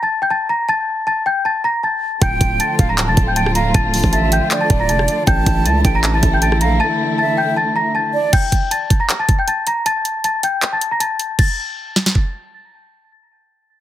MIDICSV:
0, 0, Header, 1, 6, 480
1, 0, Start_track
1, 0, Tempo, 382166
1, 863, Time_signature, 4, 2, 24, 8
1, 17337, End_track
2, 0, Start_track
2, 0, Title_t, "Celesta"
2, 0, Program_c, 0, 8
2, 33, Note_on_c, 0, 81, 73
2, 42, Note_on_c, 0, 93, 59
2, 224, Note_off_c, 0, 81, 0
2, 230, Note_off_c, 0, 93, 0
2, 276, Note_on_c, 0, 79, 72
2, 285, Note_on_c, 0, 91, 61
2, 364, Note_off_c, 0, 79, 0
2, 370, Note_off_c, 0, 91, 0
2, 382, Note_on_c, 0, 81, 89
2, 392, Note_on_c, 0, 93, 67
2, 575, Note_off_c, 0, 81, 0
2, 581, Note_off_c, 0, 93, 0
2, 621, Note_on_c, 0, 82, 81
2, 630, Note_on_c, 0, 94, 57
2, 814, Note_off_c, 0, 82, 0
2, 820, Note_off_c, 0, 94, 0
2, 861, Note_on_c, 0, 81, 108
2, 871, Note_on_c, 0, 93, 83
2, 1313, Note_off_c, 0, 81, 0
2, 1318, Note_off_c, 0, 93, 0
2, 1342, Note_on_c, 0, 81, 88
2, 1351, Note_on_c, 0, 93, 66
2, 1535, Note_off_c, 0, 81, 0
2, 1540, Note_off_c, 0, 93, 0
2, 1582, Note_on_c, 0, 79, 87
2, 1592, Note_on_c, 0, 91, 67
2, 1775, Note_off_c, 0, 79, 0
2, 1781, Note_off_c, 0, 91, 0
2, 1823, Note_on_c, 0, 81, 81
2, 1833, Note_on_c, 0, 93, 66
2, 2015, Note_off_c, 0, 81, 0
2, 2022, Note_off_c, 0, 93, 0
2, 2063, Note_on_c, 0, 82, 78
2, 2074, Note_on_c, 0, 94, 64
2, 2255, Note_off_c, 0, 82, 0
2, 2262, Note_off_c, 0, 94, 0
2, 2304, Note_on_c, 0, 81, 73
2, 2313, Note_on_c, 0, 93, 55
2, 2755, Note_off_c, 0, 81, 0
2, 2760, Note_off_c, 0, 93, 0
2, 2785, Note_on_c, 0, 79, 108
2, 2795, Note_on_c, 0, 91, 80
2, 3235, Note_off_c, 0, 79, 0
2, 3241, Note_off_c, 0, 91, 0
2, 3263, Note_on_c, 0, 81, 84
2, 3273, Note_on_c, 0, 93, 69
2, 3608, Note_off_c, 0, 81, 0
2, 3613, Note_off_c, 0, 93, 0
2, 3632, Note_on_c, 0, 82, 77
2, 3643, Note_on_c, 0, 94, 62
2, 3824, Note_off_c, 0, 82, 0
2, 3830, Note_off_c, 0, 94, 0
2, 3868, Note_on_c, 0, 81, 84
2, 3879, Note_on_c, 0, 93, 67
2, 4062, Note_off_c, 0, 81, 0
2, 4068, Note_off_c, 0, 93, 0
2, 4112, Note_on_c, 0, 79, 78
2, 4122, Note_on_c, 0, 91, 59
2, 4202, Note_off_c, 0, 79, 0
2, 4208, Note_off_c, 0, 91, 0
2, 4221, Note_on_c, 0, 81, 88
2, 4231, Note_on_c, 0, 93, 66
2, 4414, Note_off_c, 0, 81, 0
2, 4420, Note_off_c, 0, 93, 0
2, 4464, Note_on_c, 0, 82, 86
2, 4474, Note_on_c, 0, 94, 61
2, 4656, Note_off_c, 0, 82, 0
2, 4662, Note_off_c, 0, 94, 0
2, 4703, Note_on_c, 0, 81, 112
2, 4713, Note_on_c, 0, 93, 85
2, 5154, Note_off_c, 0, 81, 0
2, 5160, Note_off_c, 0, 93, 0
2, 5181, Note_on_c, 0, 81, 89
2, 5191, Note_on_c, 0, 93, 67
2, 5374, Note_off_c, 0, 81, 0
2, 5380, Note_off_c, 0, 93, 0
2, 5429, Note_on_c, 0, 79, 89
2, 5439, Note_on_c, 0, 91, 67
2, 5771, Note_off_c, 0, 79, 0
2, 5776, Note_off_c, 0, 91, 0
2, 5788, Note_on_c, 0, 81, 89
2, 5798, Note_on_c, 0, 93, 67
2, 5981, Note_off_c, 0, 81, 0
2, 5987, Note_off_c, 0, 93, 0
2, 6026, Note_on_c, 0, 82, 80
2, 6036, Note_on_c, 0, 94, 60
2, 6118, Note_off_c, 0, 82, 0
2, 6124, Note_off_c, 0, 94, 0
2, 6143, Note_on_c, 0, 81, 85
2, 6153, Note_on_c, 0, 93, 65
2, 6594, Note_off_c, 0, 81, 0
2, 6600, Note_off_c, 0, 93, 0
2, 6619, Note_on_c, 0, 79, 99
2, 6629, Note_on_c, 0, 91, 76
2, 7072, Note_off_c, 0, 79, 0
2, 7077, Note_off_c, 0, 91, 0
2, 7103, Note_on_c, 0, 81, 77
2, 7113, Note_on_c, 0, 93, 58
2, 7448, Note_off_c, 0, 81, 0
2, 7453, Note_off_c, 0, 93, 0
2, 7475, Note_on_c, 0, 82, 79
2, 7486, Note_on_c, 0, 94, 61
2, 7666, Note_off_c, 0, 82, 0
2, 7672, Note_off_c, 0, 94, 0
2, 7713, Note_on_c, 0, 81, 75
2, 7723, Note_on_c, 0, 93, 60
2, 7904, Note_off_c, 0, 81, 0
2, 7911, Note_off_c, 0, 93, 0
2, 7955, Note_on_c, 0, 79, 73
2, 7966, Note_on_c, 0, 91, 60
2, 8044, Note_off_c, 0, 79, 0
2, 8050, Note_off_c, 0, 91, 0
2, 8063, Note_on_c, 0, 81, 87
2, 8073, Note_on_c, 0, 93, 64
2, 8255, Note_off_c, 0, 81, 0
2, 8261, Note_off_c, 0, 93, 0
2, 8303, Note_on_c, 0, 82, 78
2, 8313, Note_on_c, 0, 94, 58
2, 8495, Note_off_c, 0, 82, 0
2, 8501, Note_off_c, 0, 94, 0
2, 8541, Note_on_c, 0, 81, 103
2, 8550, Note_on_c, 0, 93, 83
2, 8993, Note_off_c, 0, 81, 0
2, 8998, Note_off_c, 0, 93, 0
2, 9020, Note_on_c, 0, 81, 83
2, 9030, Note_on_c, 0, 93, 67
2, 9214, Note_off_c, 0, 81, 0
2, 9220, Note_off_c, 0, 93, 0
2, 9261, Note_on_c, 0, 79, 87
2, 9271, Note_on_c, 0, 91, 72
2, 9455, Note_off_c, 0, 79, 0
2, 9460, Note_off_c, 0, 91, 0
2, 9502, Note_on_c, 0, 81, 82
2, 9513, Note_on_c, 0, 93, 66
2, 9695, Note_off_c, 0, 81, 0
2, 9701, Note_off_c, 0, 93, 0
2, 9742, Note_on_c, 0, 82, 80
2, 9752, Note_on_c, 0, 94, 65
2, 9935, Note_off_c, 0, 82, 0
2, 9941, Note_off_c, 0, 94, 0
2, 9982, Note_on_c, 0, 81, 71
2, 9993, Note_on_c, 0, 93, 55
2, 10434, Note_off_c, 0, 81, 0
2, 10439, Note_off_c, 0, 93, 0
2, 10460, Note_on_c, 0, 79, 105
2, 10470, Note_on_c, 0, 91, 82
2, 10913, Note_off_c, 0, 79, 0
2, 10918, Note_off_c, 0, 91, 0
2, 10940, Note_on_c, 0, 81, 78
2, 10950, Note_on_c, 0, 93, 61
2, 11286, Note_off_c, 0, 81, 0
2, 11292, Note_off_c, 0, 93, 0
2, 11303, Note_on_c, 0, 82, 70
2, 11313, Note_on_c, 0, 94, 64
2, 11498, Note_off_c, 0, 82, 0
2, 11504, Note_off_c, 0, 94, 0
2, 11548, Note_on_c, 0, 81, 81
2, 11558, Note_on_c, 0, 93, 64
2, 11741, Note_off_c, 0, 81, 0
2, 11747, Note_off_c, 0, 93, 0
2, 11788, Note_on_c, 0, 79, 70
2, 11799, Note_on_c, 0, 91, 57
2, 11879, Note_off_c, 0, 79, 0
2, 11886, Note_off_c, 0, 91, 0
2, 11904, Note_on_c, 0, 81, 85
2, 11913, Note_on_c, 0, 93, 70
2, 12096, Note_off_c, 0, 81, 0
2, 12102, Note_off_c, 0, 93, 0
2, 12146, Note_on_c, 0, 82, 82
2, 12156, Note_on_c, 0, 94, 58
2, 12337, Note_off_c, 0, 82, 0
2, 12343, Note_off_c, 0, 94, 0
2, 12382, Note_on_c, 0, 81, 99
2, 12392, Note_on_c, 0, 93, 81
2, 12834, Note_off_c, 0, 81, 0
2, 12839, Note_off_c, 0, 93, 0
2, 12865, Note_on_c, 0, 81, 83
2, 12875, Note_on_c, 0, 93, 61
2, 13056, Note_off_c, 0, 81, 0
2, 13063, Note_off_c, 0, 93, 0
2, 13105, Note_on_c, 0, 79, 84
2, 13114, Note_on_c, 0, 91, 62
2, 13449, Note_off_c, 0, 79, 0
2, 13454, Note_off_c, 0, 91, 0
2, 13471, Note_on_c, 0, 81, 77
2, 13480, Note_on_c, 0, 93, 63
2, 13663, Note_off_c, 0, 81, 0
2, 13669, Note_off_c, 0, 93, 0
2, 13708, Note_on_c, 0, 82, 69
2, 13718, Note_on_c, 0, 94, 60
2, 13799, Note_off_c, 0, 82, 0
2, 13805, Note_off_c, 0, 94, 0
2, 13817, Note_on_c, 0, 81, 79
2, 13827, Note_on_c, 0, 93, 60
2, 14271, Note_off_c, 0, 81, 0
2, 14276, Note_off_c, 0, 93, 0
2, 14302, Note_on_c, 0, 93, 80
2, 15692, Note_off_c, 0, 93, 0
2, 17337, End_track
3, 0, Start_track
3, 0, Title_t, "Flute"
3, 0, Program_c, 1, 73
3, 2781, Note_on_c, 1, 79, 98
3, 3459, Note_off_c, 1, 79, 0
3, 3499, Note_on_c, 1, 77, 86
3, 3729, Note_off_c, 1, 77, 0
3, 3741, Note_on_c, 1, 81, 85
3, 4193, Note_off_c, 1, 81, 0
3, 4224, Note_on_c, 1, 79, 89
3, 4452, Note_off_c, 1, 79, 0
3, 4463, Note_on_c, 1, 77, 89
3, 4691, Note_off_c, 1, 77, 0
3, 5187, Note_on_c, 1, 76, 89
3, 5637, Note_off_c, 1, 76, 0
3, 5666, Note_on_c, 1, 74, 98
3, 6574, Note_off_c, 1, 74, 0
3, 6621, Note_on_c, 1, 81, 122
3, 7299, Note_off_c, 1, 81, 0
3, 7342, Note_on_c, 1, 79, 86
3, 7570, Note_off_c, 1, 79, 0
3, 7577, Note_on_c, 1, 81, 88
3, 8031, Note_off_c, 1, 81, 0
3, 8060, Note_on_c, 1, 79, 76
3, 8289, Note_off_c, 1, 79, 0
3, 8304, Note_on_c, 1, 77, 89
3, 8531, Note_off_c, 1, 77, 0
3, 9028, Note_on_c, 1, 76, 87
3, 9477, Note_off_c, 1, 76, 0
3, 10221, Note_on_c, 1, 74, 93
3, 10450, Note_off_c, 1, 74, 0
3, 17337, End_track
4, 0, Start_track
4, 0, Title_t, "String section"
4, 0, Program_c, 2, 48
4, 2782, Note_on_c, 2, 50, 79
4, 2782, Note_on_c, 2, 53, 75
4, 2782, Note_on_c, 2, 57, 71
4, 2783, Note_on_c, 2, 65, 83
4, 6584, Note_off_c, 2, 53, 0
4, 6584, Note_off_c, 2, 57, 0
4, 6585, Note_off_c, 2, 65, 0
4, 6621, Note_on_c, 2, 52, 71
4, 6621, Note_on_c, 2, 64, 87
4, 6622, Note_on_c, 2, 57, 72
4, 10412, Note_off_c, 2, 50, 0
4, 10424, Note_off_c, 2, 52, 0
4, 10424, Note_off_c, 2, 57, 0
4, 10424, Note_off_c, 2, 64, 0
4, 17337, End_track
5, 0, Start_track
5, 0, Title_t, "808-style bass"
5, 0, Program_c, 3, 38
5, 2783, Note_on_c, 3, 26, 112
5, 3013, Note_off_c, 3, 26, 0
5, 3023, Note_on_c, 3, 26, 104
5, 3253, Note_off_c, 3, 26, 0
5, 3503, Note_on_c, 3, 26, 109
5, 3869, Note_on_c, 3, 29, 107
5, 3888, Note_off_c, 3, 26, 0
5, 3977, Note_off_c, 3, 29, 0
5, 3983, Note_on_c, 3, 26, 102
5, 4674, Note_off_c, 3, 26, 0
5, 4703, Note_on_c, 3, 26, 114
5, 5056, Note_off_c, 3, 26, 0
5, 5070, Note_on_c, 3, 33, 107
5, 5531, Note_off_c, 3, 33, 0
5, 5903, Note_on_c, 3, 26, 106
5, 6142, Note_on_c, 3, 29, 103
5, 6161, Note_off_c, 3, 26, 0
5, 6371, Note_off_c, 3, 29, 0
5, 6623, Note_on_c, 3, 33, 111
5, 6853, Note_off_c, 3, 33, 0
5, 6864, Note_on_c, 3, 33, 114
5, 7102, Note_on_c, 3, 37, 100
5, 7121, Note_off_c, 3, 33, 0
5, 7331, Note_off_c, 3, 37, 0
5, 7344, Note_on_c, 3, 33, 105
5, 7804, Note_off_c, 3, 33, 0
5, 7824, Note_on_c, 3, 33, 109
5, 8303, Note_on_c, 3, 34, 99
5, 8322, Note_off_c, 3, 33, 0
5, 8487, Note_on_c, 3, 33, 99
5, 8506, Note_off_c, 3, 34, 0
5, 8540, Note_off_c, 3, 33, 0
5, 17337, End_track
6, 0, Start_track
6, 0, Title_t, "Drums"
6, 2783, Note_on_c, 9, 36, 120
6, 2783, Note_on_c, 9, 42, 79
6, 2908, Note_off_c, 9, 36, 0
6, 2909, Note_off_c, 9, 42, 0
6, 3023, Note_on_c, 9, 36, 94
6, 3024, Note_on_c, 9, 42, 85
6, 3149, Note_off_c, 9, 36, 0
6, 3150, Note_off_c, 9, 42, 0
6, 3264, Note_on_c, 9, 42, 80
6, 3389, Note_off_c, 9, 42, 0
6, 3503, Note_on_c, 9, 36, 99
6, 3504, Note_on_c, 9, 42, 83
6, 3629, Note_off_c, 9, 36, 0
6, 3630, Note_off_c, 9, 42, 0
6, 3743, Note_on_c, 9, 42, 77
6, 3744, Note_on_c, 9, 39, 113
6, 3869, Note_off_c, 9, 39, 0
6, 3869, Note_off_c, 9, 42, 0
6, 3982, Note_on_c, 9, 42, 79
6, 3983, Note_on_c, 9, 36, 104
6, 4108, Note_off_c, 9, 42, 0
6, 4109, Note_off_c, 9, 36, 0
6, 4222, Note_on_c, 9, 42, 96
6, 4348, Note_off_c, 9, 42, 0
6, 4351, Note_on_c, 9, 37, 90
6, 4461, Note_on_c, 9, 42, 71
6, 4476, Note_off_c, 9, 37, 0
6, 4587, Note_off_c, 9, 42, 0
6, 4703, Note_on_c, 9, 36, 124
6, 4704, Note_on_c, 9, 42, 79
6, 4829, Note_off_c, 9, 36, 0
6, 4829, Note_off_c, 9, 42, 0
6, 4945, Note_on_c, 9, 46, 86
6, 5070, Note_off_c, 9, 46, 0
6, 5070, Note_on_c, 9, 36, 100
6, 5184, Note_on_c, 9, 42, 71
6, 5196, Note_off_c, 9, 36, 0
6, 5309, Note_off_c, 9, 42, 0
6, 5424, Note_on_c, 9, 42, 91
6, 5550, Note_off_c, 9, 42, 0
6, 5663, Note_on_c, 9, 42, 77
6, 5664, Note_on_c, 9, 39, 115
6, 5789, Note_off_c, 9, 39, 0
6, 5789, Note_off_c, 9, 42, 0
6, 5902, Note_on_c, 9, 42, 84
6, 5904, Note_on_c, 9, 36, 103
6, 6028, Note_off_c, 9, 42, 0
6, 6029, Note_off_c, 9, 36, 0
6, 6142, Note_on_c, 9, 42, 94
6, 6267, Note_off_c, 9, 42, 0
6, 6271, Note_on_c, 9, 37, 91
6, 6381, Note_on_c, 9, 42, 70
6, 6396, Note_off_c, 9, 37, 0
6, 6507, Note_off_c, 9, 42, 0
6, 6623, Note_on_c, 9, 36, 124
6, 6623, Note_on_c, 9, 42, 81
6, 6748, Note_off_c, 9, 36, 0
6, 6748, Note_off_c, 9, 42, 0
6, 6863, Note_on_c, 9, 36, 97
6, 6864, Note_on_c, 9, 42, 87
6, 6989, Note_off_c, 9, 36, 0
6, 6989, Note_off_c, 9, 42, 0
6, 7103, Note_on_c, 9, 42, 78
6, 7229, Note_off_c, 9, 42, 0
6, 7343, Note_on_c, 9, 36, 103
6, 7343, Note_on_c, 9, 42, 82
6, 7468, Note_off_c, 9, 42, 0
6, 7469, Note_off_c, 9, 36, 0
6, 7582, Note_on_c, 9, 42, 77
6, 7583, Note_on_c, 9, 39, 114
6, 7708, Note_off_c, 9, 42, 0
6, 7709, Note_off_c, 9, 39, 0
6, 7822, Note_on_c, 9, 42, 80
6, 7823, Note_on_c, 9, 36, 104
6, 7947, Note_off_c, 9, 42, 0
6, 7949, Note_off_c, 9, 36, 0
6, 8061, Note_on_c, 9, 42, 95
6, 8187, Note_off_c, 9, 42, 0
6, 8190, Note_on_c, 9, 37, 91
6, 8300, Note_on_c, 9, 42, 68
6, 8316, Note_off_c, 9, 37, 0
6, 8426, Note_off_c, 9, 42, 0
6, 10462, Note_on_c, 9, 42, 78
6, 10462, Note_on_c, 9, 49, 88
6, 10463, Note_on_c, 9, 36, 116
6, 10588, Note_off_c, 9, 36, 0
6, 10588, Note_off_c, 9, 42, 0
6, 10588, Note_off_c, 9, 49, 0
6, 10703, Note_on_c, 9, 36, 93
6, 10704, Note_on_c, 9, 42, 84
6, 10829, Note_off_c, 9, 36, 0
6, 10830, Note_off_c, 9, 42, 0
6, 10944, Note_on_c, 9, 42, 78
6, 11069, Note_off_c, 9, 42, 0
6, 11183, Note_on_c, 9, 36, 93
6, 11184, Note_on_c, 9, 42, 79
6, 11309, Note_off_c, 9, 36, 0
6, 11309, Note_off_c, 9, 42, 0
6, 11423, Note_on_c, 9, 42, 77
6, 11424, Note_on_c, 9, 39, 112
6, 11549, Note_off_c, 9, 39, 0
6, 11549, Note_off_c, 9, 42, 0
6, 11663, Note_on_c, 9, 42, 77
6, 11664, Note_on_c, 9, 36, 100
6, 11789, Note_off_c, 9, 36, 0
6, 11789, Note_off_c, 9, 42, 0
6, 11902, Note_on_c, 9, 42, 90
6, 12027, Note_off_c, 9, 42, 0
6, 12140, Note_on_c, 9, 42, 69
6, 12266, Note_off_c, 9, 42, 0
6, 12383, Note_on_c, 9, 42, 76
6, 12508, Note_off_c, 9, 42, 0
6, 12624, Note_on_c, 9, 42, 76
6, 12749, Note_off_c, 9, 42, 0
6, 12863, Note_on_c, 9, 42, 72
6, 12989, Note_off_c, 9, 42, 0
6, 13103, Note_on_c, 9, 42, 83
6, 13229, Note_off_c, 9, 42, 0
6, 13342, Note_on_c, 9, 42, 70
6, 13343, Note_on_c, 9, 39, 109
6, 13468, Note_off_c, 9, 42, 0
6, 13469, Note_off_c, 9, 39, 0
6, 13583, Note_on_c, 9, 42, 80
6, 13708, Note_off_c, 9, 42, 0
6, 13821, Note_on_c, 9, 42, 89
6, 13947, Note_off_c, 9, 42, 0
6, 14061, Note_on_c, 9, 42, 68
6, 14186, Note_off_c, 9, 42, 0
6, 14303, Note_on_c, 9, 36, 103
6, 14303, Note_on_c, 9, 49, 84
6, 14428, Note_off_c, 9, 49, 0
6, 14429, Note_off_c, 9, 36, 0
6, 15023, Note_on_c, 9, 38, 58
6, 15149, Note_off_c, 9, 38, 0
6, 15150, Note_on_c, 9, 38, 71
6, 15263, Note_on_c, 9, 36, 83
6, 15276, Note_off_c, 9, 38, 0
6, 15389, Note_off_c, 9, 36, 0
6, 17337, End_track
0, 0, End_of_file